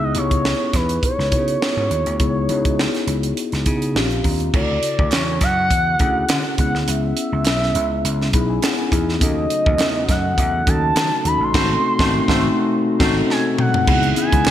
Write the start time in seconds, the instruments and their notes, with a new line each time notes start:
Already playing: slap bass C#2, tine electric piano B3 D#4 E4 G#4
0.04 analog synth lead D#5
0.14 slap bass C#2, tine electric piano B3 D#4 E4 G4, analog synth lead C#5, closed hi-hat
0.22 tine electric piano G#4
0.31 kick, closed hi-hat
0.45 snare
0.73 slap bass E2, analog synth lead B4, kick, snare, closed hi-hat
0.89 closed hi-hat
1.03 analog synth lead C#5, kick, closed hi-hat
1.19 slap bass C#2, snare
1.31 slap bass C#3, tine electric piano B3 D#4 E4 F#4, kick, closed hi-hat
1.39 tine electric piano G#4
1.48 closed hi-hat
1.62 snare
1.77 slap bass G#2
1.90 slap bass D#2, closed hi-hat
2.06 slap bass D2, closed hi-hat
2.20 slap bass C#2, tine electric piano B3 D#4 E4 G#4, kick, closed hi-hat
2.49 slap bass C#2, tine electric piano B3 D#4 E4 F#4, closed hi-hat
2.57 tine electric piano G#4
2.65 kick, closed hi-hat
2.79 snare
2.95 snare, closed hi-hat
3.07 slap bass C#2, closed hi-hat
3.23 closed hi-hat
3.37 closed hi-hat
3.52 slap bass C#2, snare, closed hi-hat
3.66 slap bass C#3, tine electric piano B3 D#4 E4 G#4, kick, closed hi-hat
3.82 closed hi-hat
3.95 slap bass A#1, tine electric piano C4 D4 F4 G4 F5, snare
4.11 closed hi-hat
4.24 slap bass D#2, tine electric piano A#5, kick, open hi-hat
4.40 closed hi-hat
4.53 slap bass D2, tine electric piano C#3 E4 F4 A4, analog synth lead D5, kick, crash
4.60 tine electric piano F#4
4.83 closed hi-hat
4.99 slap bass D2, kick
5.11 slap bass E2, analog synth lead C#5, snare, clap, closed hi-hat
5.41 slap bass F#2, analog synth lead F#5, kick, snare, closed hi-hat
5.70 slap bass E2, kick, closed hi-hat
5.99 slap bass D2, tine electric piano C#4 E4 F#4 G#4, kick, closed hi-hat
6.29 slap bass D3, snare, clap, closed hi-hat
6.58 slap bass C#2, tine electric piano B3 C#4 E4 G#4, analog synth lead F#5, kick, closed hi-hat
6.74 slap bass D2, snare
6.88 slap bass C#2, analog synth lead E5, closed hi-hat
7.17 closed hi-hat
7.32 slap bass C#2
7.45 slap bass B1, snare, clap, closed hi-hat
7.63 snare
7.75 slap bass C#2, closed hi-hat
8.04 slap bass C#2, closed hi-hat
8.22 snare
8.33 slap bass B1, tine electric piano B3 D#4 E4 G#4 B5, kick, closed hi-hat
8.50 tine electric piano G#5
8.62 tine electric piano F#5, snare, clap, closed hi-hat
8.79 tine electric piano G#5
8.92 slap bass E2, tine electric piano B3 D#4 E4 G#4, kick, closed hi-hat
9.09 snare
9.21 slap bass D#2, pipe organ C#3 F#3 A3 D#4, tine electric piano C#4 D#4 F#4 A4, analog synth lead D#5, kick, closed hi-hat
9.50 closed hi-hat
9.66 slap bass D#2, kick
9.79 slap bass E2, snare, clap, closed hi-hat
10.09 slap bass F#2, analog synth lead F#5, kick, snare, closed hi-hat
10.38 slap bass E2, analog synth lead F#5, kick, closed hi-hat
10.66 slap bass D#2, tine electric piano C#4 D#4 F#4 A4, analog synth lead A5, kick, closed hi-hat
10.96 slap bass D#3, snare, clap, closed hi-hat
11.25 slap bass D#2, tine electric piano C#4 D#4 F#4 A4, analog synth lead B5, closed hi-hat
11.40 slap bass A1, analog synth lead C6
11.54 slap bass G#1, pipe organ C3 G#3 F#4, tine electric piano A3 D#4 F#4 A4, horn section A3 F#4 C5, kick, snare, crash
11.60 tine electric piano C4
11.99 slap bass G#1, tine electric piano A3 D#4 F#4 A4, horn section A3 F#4 C5, kick, snare
12.05 tine electric piano C4
12.28 slap bass G#1, tine electric piano A3 D#4 F#4 A4, horn section A3 F#4 C5, kick, snare
12.34 tine electric piano C4
12.99 slap bass G#1, horn section A3 F#4 C5, tine electric piano C4 D#4 F#4 A4, kick, snare, crash
13.30 analog synth lead G#5, snare
13.58 analog synth lead F#5, mid tom
13.74 floor tom
13.87 slap bass C#2, pipe organ C#3 E3 B3 E4, tine electric piano B3 D#4 E4 G#4, horn section B3 G#4 E5, analog synth lead F#5, kick, crash
14.03 closed hi-hat
14.16 tine electric piano B3 C#4 E4 G#4, analog synth lead G#5, closed hi-hat
14.32 slap bass C#2, kick, closed hi-hat
14.45 slap bass B1, snare, clap